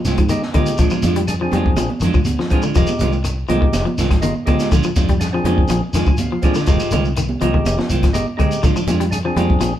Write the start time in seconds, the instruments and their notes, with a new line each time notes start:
0.05 fingered electric bass C2, clean electric guitar G#3 C4 F4, snare, closed hi-hat, shekere
0.18 fingered electric bass G#2, clean electric guitar F3, kick, closed hi-hat, claves, shekere
0.29 clean electric guitar D#3, tonewheel organ G#3 D#4 G4, closed hi-hat, high conga, shekere
0.42 snare
0.54 clean electric guitar D3 D#3 G#3 C4 F4, tonewheel organ G#3 D#4 G4, kick, closed hi-hat, high conga, low conga, claves, shekere
0.66 closed hi-hat, shekere
0.78 fingered electric bass A#1, clean electric guitar F3 G#3 D4, muted clean electric guitar stroke, kick, closed hi-hat, shekere
0.90 clean electric guitar F3 G#3 D4 F4, high conga, claves, shekere
1.02 fingered electric bass F2, clean electric guitar F3 G#3 D4 F4, closed hi-hat, high conga, shekere
1.15 clean electric guitar G3, closed hi-hat, shekere
1.27 tonewheel organ D4 G#4, closed hi-hat, claves, shekere
1.41 clean electric guitar F3, tonewheel organ C4 D4 G#4
1.52 fingered electric bass F2, clean electric guitar F3 G3 G#3 D4 F4, closed hi-hat, high conga, low conga, shekere
1.66 kick
1.76 fingered electric bass A#1, clean electric guitar F3, closed hi-hat, high conga, claves, shekere
1.90 high conga
2.00 fingered electric bass F2, clean electric guitar D#3 F3 G#3, closed hi-hat, shekere
2.04 clean electric guitar D4 F4
2.13 fingered electric bass D2, clean electric guitar F3, kick, claves, shekere
2.25 closed hi-hat, high conga, shekere
2.39 clean electric guitar F3, snare
2.50 clean electric guitar F3 G#3 D4 F4, tonewheel organ C4 D4 G#4, kick, closed hi-hat, low conga, claves, shekere
2.62 clean electric guitar D3 G#3 D4 F4, shekere
2.75 fingered electric bass F1, clean electric guitar D#3 F3 G#3 C4 F4, tonewheel organ G#3 D#4 G4, kick, closed hi-hat, low conga, shekere
2.87 muted fingered electric bass stroke, high conga, claves, shekere
2.99 fingered electric bass C2, clean electric guitar D#3 G#3 C4 F4, closed hi-hat, high conga, low conga, shekere
3.12 shekere
3.24 muted clean electric guitar stroke, closed hi-hat, claves, shekere
3.48 fingered electric bass C2, clean electric guitar D#3 F3 G#3 C4 F4, tonewheel organ G#3 D#4 G4, closed hi-hat, high conga, low conga, shekere
3.61 clean electric guitar D#3, kick
3.73 fingered electric bass F1, snare, closed hi-hat, high conga, claves, shekere
3.85 clean electric guitar F3, high conga
3.98 fingered electric bass C2, clean electric guitar D#3 G#3 C4 F4, snare, closed hi-hat, shekere
4.10 fingered electric bass G#1, clean electric guitar F3, kick, snare, closed hi-hat, claves, shekere
4.21 clean electric guitar D#3, tonewheel organ G#3 D#4 F4, closed hi-hat, high conga, shekere
4.46 clean electric guitar D3 G#3 C4 F4, tonewheel organ G#3 D#4 G4, muted clean electric guitar stroke, kick, closed hi-hat, high conga, low conga, claves, shekere
4.60 clean electric guitar G#3 C4 F4, snare, closed hi-hat, shekere
4.72 fingered electric bass A#1, clean electric guitar D3 F3 G#3 D4 F4, kick, closed hi-hat, shekere
4.83 clean electric guitar F3, muted fingered electric bass stroke, claves, shekere
4.96 fingered electric bass F2, clean electric guitar F3 G#3 D4 F4, kick, closed hi-hat, high conga, shekere
5.09 clean electric guitar G3, kick, closed hi-hat, shekere
5.20 tonewheel organ D4 G#4, snare, closed hi-hat, claves, shekere
5.33 clean electric guitar F3, tonewheel organ C4 D4 G#4
5.44 fingered electric bass F2, clean electric guitar F3 G#3 D4 F4, muted clean electric guitar stroke, closed hi-hat, high conga, low conga, shekere
5.58 kick
5.68 fingered electric bass A#1, clean electric guitar F3, closed hi-hat, high conga, claves, shekere
5.93 fingered electric bass F2, clean electric guitar D#3 F3 G#3 D4 F4, tonewheel organ G#5, snare, closed hi-hat, shekere
6.06 fingered electric bass D2, clean electric guitar F3, kick, claves, shekere
6.17 tonewheel organ F5, closed hi-hat, high conga, shekere
6.32 clean electric guitar F3
6.42 clean electric guitar F3 G#3 D4 F4, tonewheel organ C4 D4 G#4 D5, kick, closed hi-hat, low conga, claves, shekere
6.54 clean electric guitar D3 G#3 D4 F4, snare, shekere
6.67 fingered electric bass F1, clean electric guitar D#3 F3 G#3 C4 F4, tonewheel organ G#3 D#4 G4, kick, closed hi-hat, shekere
6.79 clean electric guitar G#3 C4 F4, muted fingered electric bass stroke, claves, shekere
6.91 fingered electric bass C2, clean electric guitar D3 D#3 G#3 C4 F4, closed hi-hat, high conga, shekere
7.05 shekere
7.17 clean electric guitar D#3, closed hi-hat, claves, shekere
7.29 high conga
7.41 fingered electric bass C2, clean electric guitar D#3 F3 G#3 C4 F4, tonewheel organ G#3 D#4 G4, closed hi-hat, high conga, low conga, shekere
7.54 clean electric guitar D#3, kick
7.65 fingered electric bass F1, closed hi-hat, high conga, claves, shekere
7.79 clean electric guitar F3, snare, high conga
7.89 fingered electric bass C2, clean electric guitar D#3 G#3 C4 F4, closed hi-hat, shekere
8.03 fingered electric bass G#1, clean electric guitar F3, kick, snare, closed hi-hat, claves, shekere
8.13 tonewheel organ G#3 D#4 G4, muted clean electric guitar stroke, closed hi-hat, high conga, shekere
8.37 clean electric guitar D3 G#3 C4, tonewheel organ G#3 D#4 G4, muted clean electric guitar stroke, kick, closed hi-hat, low conga, claves, shekere
8.52 closed hi-hat, shekere
8.63 fingered electric bass A#1, clean electric guitar D3 G#3 D4 F4, kick, closed hi-hat, low conga, shekere
8.75 clean electric guitar F3 D4 F4, muted fingered electric bass stroke, claves, shekere
8.87 fingered electric bass F2, clean electric guitar G#3 D4 F4, closed hi-hat, high conga, shekere
9.00 clean electric guitar G3, closed hi-hat, shekere
9.11 tonewheel organ D4 G#4, closed hi-hat, claves, shekere
9.25 clean electric guitar F3, tonewheel organ C4 D4 G#4
9.36 fingered electric bass F2, clean electric guitar G3 G#3 D4 F4, closed hi-hat, high conga, low conga, shekere
9.50 kick
9.61 fingered electric bass A#1, clean electric guitar F3, closed hi-hat, high conga, claves, shekere